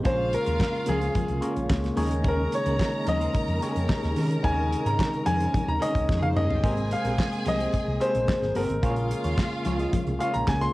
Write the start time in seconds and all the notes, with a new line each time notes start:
Already playing: G#3 A#3
0.03 A#1 C#3 A#3 C#4 F4 G#4 A#4 C5 C#5 F5, kick, closed hi-hat, muted conga
0.18 muted clean electric guitar stroke
0.32 A#4, muted clean electric guitar stroke, closed hi-hat
0.44 D#2 C#4 G#4 A#4, closed hi-hat
0.60 kick, snare, clap, high conga
0.73 muted clean electric guitar stroke
0.86 C#2 C#4 G#4 A#4, closed hi-hat, muted conga, low conga
1.01 C#4 G#4 C5, closed hi-hat
1.15 kick, closed hi-hat, muted conga, low conga
1.28 C2, muted clean electric guitar stroke, closed hi-hat
1.41 A#3 C#4 F4 G#4 A#4 C#5, closed hi-hat, muted conga
1.56 A#1, muted clean electric guitar stroke, closed hi-hat
1.69 C#2, muted clean electric guitar stroke, kick, snare, clap, high conga
1.82 muted clean electric guitar stroke, snare, closed hi-hat
1.96 D#2 D#3 C#4 D#4 G#4 A#4 C#5 A#5, open hi-hat, high conga
2.10 muted clean electric guitar stroke, closed hi-hat
2.23 C#4 G#4 A#4, kick, closed hi-hat, muted conga
2.28 A#4
2.37 muted clean electric guitar stroke
2.51 C#5, muted clean electric guitar stroke, closed hi-hat
2.65 C#2 C#4 G#4 A#4, closed hi-hat
2.79 kick, snare, clap, high conga
2.93 muted clean electric guitar stroke
3.06 D#2 C#4 G#4 A#4 D#5, closed hi-hat, muted conga, low conga
3.20 C#4 G#4 C5, closed hi-hat
3.34 kick, closed hi-hat, muted conga
3.48 F2, muted clean electric guitar stroke, closed hi-hat
3.60 D#3 C#4 D#4 G4 G#4 A#4 C#5, closed hi-hat, muted conga
3.68 G#4
3.76 F2, muted clean electric guitar stroke, closed hi-hat
3.88 kick, snare, clap, high conga
4.03 D#2, muted clean electric guitar stroke, snare, closed hi-hat
4.16 C3 D#3 C#4 G#4 A#4, open hi-hat, high conga
4.31 muted clean electric guitar stroke, closed hi-hat
4.43 D#2 D#3 C#4 D#4 G#4 A#4 C#5 G#5, kick, closed hi-hat, muted conga
4.57 muted clean electric guitar stroke
4.71 muted clean electric guitar stroke, closed hi-hat
4.85 G#2 C#4 G#4 A#4 A#5, closed hi-hat
4.98 muted clean electric guitar stroke, kick, snare, clap, high conga
5.13 muted clean electric guitar stroke, closed hi-hat
5.26 F2 C#4 G#4 A#4 G#5, closed hi-hat, muted conga, low conga
5.39 C#4 G#4 C5, closed hi-hat
5.54 kick, closed hi-hat, muted conga, low conga
5.67 D#2 A#5, muted clean electric guitar stroke
5.80 D#3 C#4 D#4 G#4 A#4 C#5 D#5, closed hi-hat, muted conga
5.94 C#2, muted clean electric guitar stroke, kick, closed hi-hat
6.08 F2, muted clean electric guitar stroke, kick, snare, high conga
6.16 G#3 G#4
6.21 A#3 A#4 F5, muted clean electric guitar stroke, high tom
6.29 C4 C5
6.35 G1 C#4 G#4 A#4 C#5 D#5, mid tom, high conga
6.42 D#4 D#5
6.49 F4 F5, muted clean electric guitar stroke, floor tom
6.55 G4 G5
6.62 G#1 C3 G#3 A#3 C4 G4 G#4 A#4 C5 G#5, kick, closed hi-hat
6.76 muted clean electric guitar stroke, closed hi-hat
6.91 F5, muted clean electric guitar stroke, closed hi-hat
7.05 A#1 C4 G4 A#4, closed hi-hat
7.18 kick, snare, clap, high conga
7.32 muted clean electric guitar stroke, closed hi-hat
7.45 C2 C4 G4 A#4 D#5, closed hi-hat, muted conga, low conga
7.59 C4 G4 C5, closed hi-hat
7.73 kick, closed hi-hat, muted conga
7.86 C2, muted clean electric guitar stroke
8.00 G#3 C4 G4 G#4 A#4 C5, closed hi-hat, muted conga
8.14 A#1, muted clean electric guitar stroke, closed hi-hat
8.27 muted clean electric guitar stroke, kick, snare, clap, high conga
8.42 G#1, muted clean electric guitar stroke, snare
8.55 G1 C4 G4 A#4, open hi-hat, high conga
8.69 G#1, muted clean electric guitar stroke, closed hi-hat
8.82 A#1 C#3 A#3 F4 G#4 C5 C#5 F5, kick, closed hi-hat
8.90 C#5
8.96 muted clean electric guitar stroke, closed hi-hat
9.11 muted clean electric guitar stroke, closed hi-hat
9.24 D#2 F4 G#4 C#5, closed hi-hat
9.37 muted clean electric guitar stroke, kick, snare, clap, high conga
9.53 muted clean electric guitar stroke
9.65 C#2 F4 G#4 C#5, closed hi-hat, muted conga, low conga
9.79 F4 G#4 D#5, closed hi-hat
9.93 kick, closed hi-hat, muted conga, low conga
10.07 C2, muted clean electric guitar stroke, closed hi-hat
10.19 A#3 F4 G#4 C#5 F5, closed hi-hat, muted conga
10.23 G#4 C#5
10.33 A#1 A#5, muted clean electric guitar stroke, closed hi-hat
10.48 C#2 G#5, muted clean electric guitar stroke, kick, snare, clap, high conga
10.61 C6, muted clean electric guitar stroke, snare, closed hi-hat